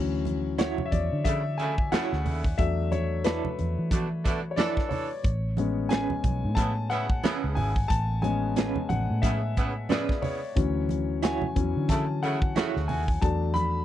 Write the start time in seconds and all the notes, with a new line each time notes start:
Already playing: D2 E3 F#3 C#4
0.25 closed hi-hat, muted conga, high conga
0.58 E4 F#4 C#5, snare, closed hi-hat
0.78 high conga, low conga
0.86 E5
0.91 E2 D5, kick, closed hi-hat, high conga
1.12 D3
1.24 C#3 A3 E4 E5, kick, closed hi-hat, high conga
1.58 C#3 A3 E4 G#5, closed hi-hat
1.78 kick
1.92 C#3 A3 E4 F#4 C#5 F#5, snare, closed hi-hat, high conga
2.13 D2, snare
2.26 D#2, open hi-hat, low conga
2.44 kick
2.58 E2 F#3 A3 D4 E5, kick, closed hi-hat
2.92 C#5, closed hi-hat, high conga
3.24 E4 A4 B4 D5, snare, closed hi-hat
3.45 high conga, low conga
3.59 E2, closed hi-hat, high conga
3.79 E3
3.91 B2 A3 D4, kick, closed hi-hat, high conga
4.25 B2 A3 D4, kick, closed hi-hat
4.51 C#5
4.56 E3 D4 E4 A4 D5, snare, closed hi-hat, muted conga, high conga
4.77 kick, snare
4.89 C#5, open hi-hat, low conga
5.24 A1, kick, closed hi-hat, muted conga
5.57 G#3 B3 C#4, closed hi-hat, high conga
5.89 C#4 G#4 B4 G#5, snare, closed hi-hat
6.10 high conga, low conga
6.24 B1, kick, closed hi-hat, high conga
6.44 A2
6.55 C#3 B3 E4 A5, kick, closed hi-hat, high conga
6.90 C#3 B3 E4 F#5, closed hi-hat, muted conga
7.10 kick
7.23 C#3 B3 C#4 E4 G#4 B4, snare, closed hi-hat, high conga
7.44 C#2
7.55 G#1 G#5, open hi-hat, muted conga, low conga
7.76 kick
7.88 A1 A5, kick, closed hi-hat, muted conga
8.22 G#3 B3 C#4 G#5, closed hi-hat, high conga
8.56 C#4 G#4 B4, snare, closed hi-hat
8.76 high conga, low conga
8.89 A1 F#5, closed hi-hat, muted conga, high conga, low conga
9.10 A2
9.22 C#3 B3 E4 E5, kick, snare, closed hi-hat, muted conga, high conga
9.57 C#3 B3 E4, kick, closed hi-hat, muted conga
9.89 C#3 B3 C#4 E4 G#4 B4 D5, snare, closed hi-hat, muted conga, high conga
10.09 kick, snare
10.22 C#5, open hi-hat, low conga
10.56 D2 E3 F#3 C#4, kick, closed hi-hat
10.89 closed hi-hat, high conga
11.22 E4 F#4 C#5 G#5, snare, closed hi-hat
11.42 high conga, low conga
11.55 E2 E3 F#3 C#4, kick, closed hi-hat, high conga
11.77 D3
11.89 C#3 A3 E4 A5, kick, snare, closed hi-hat, muted conga, high conga
12.23 C#3 A3 E4 F#5, closed hi-hat
12.42 kick
12.56 C#3 A3 E4 F#4 C#5, snare, closed hi-hat, high conga
12.76 D2, snare
12.88 D#2 G#5, open hi-hat, muted conga, low conga
13.08 kick
13.21 E2 F#3 A3 D4 A5, kick, closed hi-hat
13.54 B5, closed hi-hat, high conga